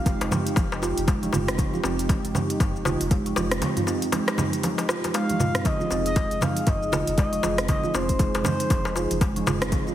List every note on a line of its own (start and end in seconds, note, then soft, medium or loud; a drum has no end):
0.00 0.16 F1 loud
0.00 9.95 D#4 medium
0.00 5.64 G4 medium
0.00 0.31 F5 loud
0.05 0.14 G#3 medium
0.05 kick loud
0.05 closed hi-hat medium
0.05 high conga medium
0.05 darbuka tek medium
0.05 shaker soft
0.21 0.29 F1 loud
0.21 closed hi-hat soft
0.21 darbuka ka loud
0.21 shaker soft
0.31 0.45 F3 medium
0.31 mid tom medium
0.31 high conga loud
0.31 darbuka tek medium
0.31 low conga loud
0.31 shaker medium
0.47 closed hi-hat soft
0.47 shaker soft
0.56 0.93 F1 loud
0.56 0.70 F3 medium
0.56 kick loud
0.56 closed hi-hat medium
0.56 darbuka tek medium
0.56 high conga loud
0.56 shaker medium
0.72 darbuka ka loud
0.72 shaker soft
0.82 0.97 F4 medium
0.82 darbuka tek medium
0.82 shaker medium
0.97 1.30 F1 loud
0.97 closed hi-hat soft
0.97 high conga medium
0.97 shaker soft
1.08 1.21 G#3 loud
1.08 kick loud
1.08 closed hi-hat medium
1.08 darbuka tek medium
1.08 shaker medium
1.23 1.28 F3 medium
1.23 closed hi-hat soft
1.23 high conga medium
1.23 shaker soft
1.33 1.69 F1 medium
1.33 1.47 F4 medium
1.33 mid tom medium
1.33 darbuka tek medium
1.33 low conga loud
1.33 shaker medium
1.48 1.58 C4 medium
1.48 cross-stick medium
1.48 closed hi-hat soft
1.48 shaker soft
1.58 1.73 F3 loud
1.58 kick loud
1.58 closed hi-hat medium
1.58 darbuka tek medium
1.58 low conga medium
1.58 shaker medium
1.74 1.83 F4 medium
1.74 high conga loud
1.74 shaker soft
1.84 2.20 F1 loud
1.84 1.97 C4 loud
1.84 darbuka tek medium
1.84 shaker medium
1.99 closed hi-hat soft
1.99 shaker soft
2.09 2.17 G#3 medium
2.09 kick loud
2.09 closed hi-hat medium
2.09 darbuka tek medium
2.09 high conga medium
2.09 shaker medium
2.24 2.33 F1 loud
2.24 closed hi-hat soft
2.24 shaker soft
2.35 2.48 F3 medium
2.35 mid tom medium
2.35 high conga loud
2.35 darbuka tek medium
2.35 low conga loud
2.35 shaker medium
2.50 closed hi-hat soft
2.50 shaker soft
2.60 2.96 F1 loud
2.60 2.74 F3 medium
2.60 kick loud
2.60 closed hi-hat medium
2.60 mid tom loud
2.60 darbuka tek medium
2.60 shaker medium
2.76 shaker soft
2.85 3.00 F4 medium
2.85 darbuka ka loud
2.85 high conga medium
2.85 darbuka tek medium
2.85 low conga loud
2.85 shaker medium
3.01 3.33 F1 loud
3.01 closed hi-hat soft
3.01 shaker soft
3.11 3.25 G#3 loud
3.11 kick loud
3.11 closed hi-hat medium
3.11 darbuka tek medium
3.11 shaker soft
3.26 3.32 F3 medium
3.26 closed hi-hat soft
3.26 shaker soft
3.36 3.62 F1 medium
3.36 3.51 F4 medium
3.36 darbuka ka loud
3.36 darbuka tek medium
3.36 high conga medium
3.36 shaker medium
3.51 3.61 C4 medium
3.51 cross-stick medium
3.51 closed hi-hat soft
3.51 shaker soft
3.62 3.76 F3 loud
3.62 closed hi-hat medium
3.62 darbuka tek medium
3.62 low conga loud
3.62 shaker medium
3.77 3.86 F4 medium
3.77 closed hi-hat soft
3.77 mid tom medium
3.77 high conga loud
3.77 shaker soft
3.87 4.01 C4 loud
3.87 darbuka tek medium
3.87 shaker medium
4.02 closed hi-hat soft
4.02 shaker soft
4.12 4.21 G#3 medium
4.12 closed hi-hat medium
4.12 darbuka tek medium
4.12 high conga loud
4.12 shaker medium
4.28 cross-stick medium
4.28 closed hi-hat soft
4.28 darbuka ka loud
4.28 shaker soft
4.38 4.52 F3 medium
4.38 mid tom medium
4.38 darbuka tek medium
4.38 high conga loud
4.38 low conga loud
4.38 shaker medium
4.53 closed hi-hat soft
4.53 shaker soft
4.63 4.77 F3 medium
4.63 closed hi-hat medium
4.63 high conga loud
4.63 darbuka tek medium
4.63 shaker medium
4.78 closed hi-hat soft
4.78 darbuka ka loud
4.78 shaker soft
4.89 5.03 F4 medium
4.89 cross-stick medium
4.89 darbuka tek medium
4.89 shaker medium
5.04 closed hi-hat soft
5.04 darbuka ka medium
5.04 high conga medium
5.04 shaker soft
5.14 5.28 G#3 loud
5.14 5.67 F5 loud
5.14 closed hi-hat medium
5.14 darbuka tek medium
5.14 shaker soft
5.29 5.35 F3 medium
5.29 closed hi-hat soft
5.29 high tom medium
5.29 high conga medium
5.29 shaker soft
5.40 5.54 F4 medium
5.40 mid tom medium
5.40 darbuka tek medium
5.40 low conga loud
5.40 shaker medium
5.55 5.65 C4 medium
5.55 cross-stick medium
5.55 closed hi-hat soft
5.55 mid tom medium
5.55 shaker soft
5.64 5.80 F3 loud
5.64 9.95 G#4 medium
5.64 6.06 D#5 loud
5.64 kick loud
5.64 closed hi-hat medium
5.64 darbuka tek medium
5.64 low conga loud
5.64 shaker medium
5.80 5.90 F4 medium
5.80 high conga loud
5.80 shaker soft
5.90 6.27 F1 loud
5.90 6.04 C4 loud
5.90 darbuka tek medium
5.90 shaker medium
6.06 6.44 D#5 loud
6.06 closed hi-hat soft
6.06 shaker soft
6.16 6.24 G#3 medium
6.16 kick loud
6.16 closed hi-hat medium
6.16 high conga medium
6.16 darbuka tek medium
6.16 shaker medium
6.31 6.40 F1 loud
6.31 closed hi-hat soft
6.31 shaker soft
6.41 6.55 F3 medium
6.41 6.69 F5 loud
6.41 mid tom medium
6.41 high conga loud
6.41 darbuka tek medium
6.41 low conga loud
6.41 shaker loud
6.57 closed hi-hat soft
6.57 shaker soft
6.67 7.03 F1 loud
6.67 6.80 F3 medium
6.67 7.18 D#5 loud
6.67 kick loud
6.67 closed hi-hat medium
6.67 mid tom loud
6.67 darbuka tek medium
6.67 shaker medium
6.83 shaker soft
6.92 7.07 F4 medium
6.92 darbuka ka loud
6.92 high conga medium
6.92 darbuka tek medium
6.92 low conga loud
6.92 shaker loud
7.07 7.40 F1 loud
7.07 closed hi-hat soft
7.07 shaker soft
7.18 7.31 G#3 loud
7.18 7.65 D#5 loud
7.18 kick loud
7.18 closed hi-hat medium
7.18 darbuka tek medium
7.18 shaker medium
7.33 7.38 F3 medium
7.33 closed hi-hat soft
7.33 shaker soft
7.43 7.79 F1 medium
7.43 7.58 F4 medium
7.43 darbuka ka loud
7.43 high conga medium
7.43 darbuka tek medium
7.43 shaker medium
7.58 7.68 C4 medium
7.58 cross-stick medium
7.58 closed hi-hat soft
7.58 shaker soft
7.68 7.83 F3 loud
7.68 7.96 D#5 loud
7.68 kick loud
7.68 closed hi-hat medium
7.68 darbuka tek loud
7.68 low conga loud
7.68 shaker medium
7.83 7.93 F4 medium
7.83 high conga loud
7.83 shaker soft
7.94 8.30 F1 loud
7.94 8.08 C4 loud
7.94 8.45 C5 loud
7.94 darbuka tek medium
7.94 shaker loud
8.09 kick medium
8.09 closed hi-hat soft
8.09 shaker soft
8.19 8.28 G#3 medium
8.19 kick loud
8.19 closed hi-hat medium
8.19 high conga medium
8.19 darbuka tek medium
8.19 shaker medium
8.34 8.43 F1 loud
8.34 closed hi-hat soft
8.34 darbuka ka loud
8.34 shaker soft
8.44 8.59 F3 medium
8.44 9.18 C5 medium
8.44 mid tom medium
8.44 high conga loud
8.44 darbuka tek loud
8.44 low conga loud
8.44 shaker loud
8.60 closed hi-hat soft
8.60 shaker soft
8.70 9.06 F1 loud
8.70 8.84 F3 medium
8.70 kick loud
8.70 closed hi-hat medium
8.70 high conga loud
8.70 darbuka tek medium
8.70 shaker medium
8.85 darbuka ka loud
8.85 shaker soft
8.96 9.10 F4 medium
8.96 darbuka tek medium
8.96 shaker loud
9.11 9.43 F1 loud
9.11 closed hi-hat soft
9.11 high conga medium
9.11 shaker soft
9.21 9.35 G#3 loud
9.21 kick loud
9.21 closed hi-hat medium
9.21 darbuka tek medium
9.21 shaker medium
9.36 9.42 F3 medium
9.36 closed hi-hat soft
9.36 high conga loud
9.36 shaker soft
9.46 9.82 F1 medium
9.46 9.61 F4 medium
9.46 mid tom medium
9.46 darbuka tek loud
9.46 low conga loud
9.46 shaker loud
9.62 9.71 C4 medium
9.62 cross-stick medium
9.62 closed hi-hat soft
9.62 shaker soft
9.72 9.86 F3 loud
9.72 kick loud
9.72 closed hi-hat medium
9.72 darbuka tek medium
9.72 low conga loud
9.72 shaker medium
9.87 9.95 F4 medium
9.87 high conga loud
9.87 shaker soft